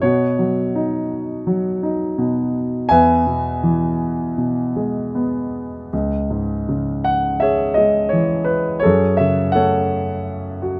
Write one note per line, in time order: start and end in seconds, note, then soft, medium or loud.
0.02 2.17 B2 medium
0.02 2.86 F#4 soft
0.02 2.98 C#5 medium
0.39 1.45 F#3 soft
0.75 1.82 D#4 soft
1.47 2.86 F#3 medium
1.83 2.87 D#4 soft
2.18 2.88 B2 medium
2.89 5.89 E2 medium
2.89 4.34 B4 medium
2.89 4.34 E5 medium
2.89 4.33 G#5 medium
3.27 4.36 B2 soft
3.63 5.11 E3 soft
4.38 5.89 B2 soft
4.76 5.89 G#3 soft
5.15 5.90 B3 soft
5.93 8.81 C#2 medium
6.30 7.73 G#2 soft
6.69 8.09 C#3 soft
7.04 7.42 F#5 medium
7.40 8.81 G#4 medium
7.40 8.07 C#5 medium
7.40 7.77 E5 medium
7.74 8.82 G#3 soft
7.74 8.12 D#5 medium
8.09 8.82 E3 soft
8.09 8.44 C#5 medium
8.44 8.83 B4 medium
8.80 10.22 G#4 medium
8.80 9.54 A4 medium
8.80 9.15 C#5 medium
8.85 10.80 F#2 medium
9.17 10.58 C#3 soft
9.17 9.55 E5 medium
9.52 10.80 A3 soft
9.52 10.80 A4 medium
9.52 10.80 C#5 medium
9.52 10.80 F#5 medium
10.62 10.80 F#4 soft